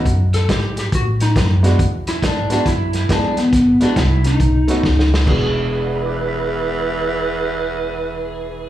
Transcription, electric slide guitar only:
X:1
M:4/4
L:1/8
Q:"Swing" 1/4=138
K:Emix
V:1 name="Electric slide guitar"
z A =G G F ^D z2 | z E D D E2 D B,- | B, D E ^D4 z | G8- |
G8 |]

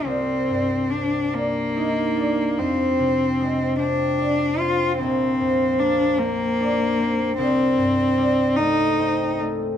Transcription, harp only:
X:1
M:6/8
L:1/8
Q:3/8=49
K:Cm
V:1 name="Harp"
[C,,G] G,, C D E D | F,, C, A, C D C | B,,, F,, B, C D C | C,, G,, G, =A, C A, |]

